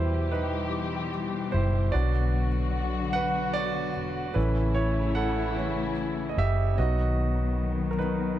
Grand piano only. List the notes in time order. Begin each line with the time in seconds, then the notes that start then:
Already playing: B2 G3 E4 B4 C5
0.32 D#4 B4
1.52 E4 C5
1.92 F#3 B3 D4 F#4 D5
3.13 B4 F#5
3.54 F#3 B3 D4 F#4 D5
4.34 E3 A3 C#4 E4 B4
4.74 E4 C#5
5.15 A4 F#5
5.56 E3 A3 C#4
6.29 D#5
6.38 G4 E5
6.78 F#3 B3 D#4 F#4 D#5
7.91 A#4
7.99 D#4 B4